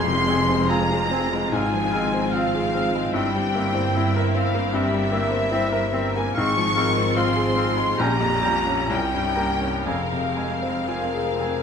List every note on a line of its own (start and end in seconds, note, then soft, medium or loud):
0.00 1.49 F1 medium
0.00 1.08 F2 medium
0.00 1.49 F2 medium
0.00 1.50 F2 medium
0.00 1.50 G#3 medium
0.00 3.11 F4 medium
0.00 1.49 G#4 medium
0.00 0.66 C6 medium
0.00 0.71 C6 medium
0.06 0.40 C3 medium
0.27 0.61 G#3 medium
0.27 0.43 C4 medium
0.27 0.45 G#5 medium
0.49 0.83 C4 medium
0.68 0.85 C4 medium
0.68 1.04 F4 medium
0.68 0.85 G#5 medium
0.68 1.52 A#5 medium
0.68 1.56 A#5 medium
0.68 1.53 A#5 medium
0.91 1.25 G#4 medium
1.11 1.45 C4 medium
1.11 1.28 C4 medium
1.11 1.29 G#5 soft
1.33 1.53 G#3 medium
1.52 3.11 G#1 medium
1.52 3.10 G#2 medium
1.52 3.12 G#2 medium
1.52 6.34 C4 medium
1.52 1.70 C4 medium
1.52 1.93 F4 medium
1.52 1.70 F5 medium
1.52 2.33 G#5 medium
1.52 2.32 G#5 medium
1.52 2.35 G#5 medium
1.74 2.06 F3 medium
1.91 2.26 G#3 medium
1.91 2.11 C4 medium
1.91 2.34 D#4 medium
1.91 2.07 F5 medium
2.14 2.46 C4 medium
2.31 3.14 F4 medium
2.31 2.66 F4 medium
2.31 2.47 F5 medium
2.31 3.14 F5 medium
2.31 3.15 F5 medium
2.35 2.51 C4 medium
2.55 2.87 G#4 medium
2.74 3.07 C4 medium
2.74 2.91 C4 medium
2.74 2.90 F5 soft
2.95 3.15 G#3 medium
3.13 6.32 G1 medium
3.13 4.69 G2 medium
3.13 6.32 G2 medium
3.13 3.30 C4 medium
3.13 6.36 E4 medium
3.13 3.54 E4 medium
3.13 3.29 E5 medium
3.13 4.12 G5 medium
3.13 4.13 G5 medium
3.13 4.14 G5 medium
3.35 3.67 G3 soft
3.53 3.87 A#3 medium
3.53 3.73 C4 medium
3.53 4.71 E4 medium
3.53 3.69 E5 medium
3.75 4.07 C4 medium
3.95 4.12 C4 medium
3.95 4.28 E4 medium
3.95 4.11 E5 medium
4.16 4.47 A#4 medium
4.16 4.35 E5 medium
4.16 4.36 E5 medium
4.16 4.38 E5 medium
4.35 4.66 C4 medium
4.35 4.52 C4 medium
4.35 4.52 E5 medium
4.35 4.74 F5 medium
4.35 4.75 F5 medium
4.35 4.74 F5 medium
4.54 4.85 A#3 medium
4.73 6.32 G2 medium
4.73 4.90 C4 medium
4.73 5.12 G4 medium
4.73 6.15 E5 medium
4.73 6.18 E5 medium
4.73 4.91 E5 medium
4.73 6.16 E5 medium
4.93 5.23 G3 medium
5.11 5.43 A#3 medium
5.11 5.27 C4 medium
5.11 5.51 A#4 medium
5.11 5.28 E5 medium
5.31 5.63 C4 medium
5.51 5.68 C4 medium
5.51 5.84 E4 medium
5.51 5.93 C5 medium
5.51 5.68 E5 medium
5.72 6.07 A#4 medium
5.92 6.28 C4 medium
5.92 6.09 C4 medium
5.92 6.23 A#4 medium
5.92 6.09 E5 medium
6.15 6.37 A#3 medium
6.15 6.36 G#5 medium
6.15 6.37 G#5 medium
6.34 7.97 G#1 medium
6.34 7.96 G#2 medium
6.34 7.96 C4 medium
6.34 6.53 C4 medium
6.34 7.96 F4 medium
6.34 6.75 G#4 medium
6.34 6.50 F5 medium
6.34 7.15 C#6 medium
6.34 7.15 C#6 loud
6.34 6.89 C#6 loud
6.57 6.89 F3 medium
6.75 7.09 G#3 medium
6.75 6.93 C4 medium
6.75 7.17 A#4 medium
6.75 6.91 F5 medium
6.98 7.29 C4 medium
7.15 7.32 C4 medium
7.15 7.49 F4 medium
7.15 7.57 C5 medium
7.15 7.31 F5 medium
7.15 8.00 C6 medium
7.15 8.02 C6 medium
7.36 7.70 G#4 medium
7.55 7.90 C4 medium
7.55 7.74 C4 medium
7.55 7.99 G#4 medium
7.55 7.71 F5 medium
7.77 7.99 G#3 medium
7.96 8.89 A#1 medium
7.96 8.88 A#1 medium
7.96 8.88 A#2 medium
7.96 9.84 C#4 medium
7.96 8.43 G4 medium
7.96 8.90 G4 medium
7.96 8.13 G5 medium
7.96 8.90 A#5 medium
7.96 8.89 A#5 medium
8.01 8.17 C#4 medium
8.01 8.93 A#5 medium
8.20 8.57 F2 medium
8.42 8.81 G3 medium
8.42 8.60 C#4 medium
8.42 8.90 F4 medium
8.42 8.58 G5 medium
8.67 8.90 C#4 medium
8.87 9.88 C2 medium
8.87 9.85 C2 medium
8.87 9.06 C#4 medium
8.87 9.36 E4 medium
8.87 10.88 A#4 medium
8.87 9.88 G5 medium
8.87 9.87 G5 medium
8.87 9.88 G5 medium
8.87 9.04 A#5 soft
9.14 9.53 G2 soft
9.35 9.77 A#3 soft
9.35 9.54 C#4 soft
9.35 9.87 G4 medium
9.35 9.51 A#5 soft
9.61 9.87 C#4 soft
9.85 11.63 F1 medium
9.85 11.63 F2 medium
9.85 11.63 C4 medium
9.85 10.04 C4 soft
9.85 10.76 G#4 medium
9.85 11.63 F5 medium
9.85 10.01 G#5 soft
10.13 10.54 C3 soft
10.35 10.78 G#3 soft
10.35 10.51 G#5 soft
10.39 10.55 C4 soft
10.62 11.03 C4 soft
10.88 11.04 C4 soft
10.88 11.28 F4 soft
10.88 11.63 G#4 soft
10.88 11.63 A#4 medium
10.88 11.04 G#5 soft
11.14 11.55 G#4 soft
11.39 11.55 C4 soft
11.39 11.63 C4 soft
11.39 11.55 G#5 soft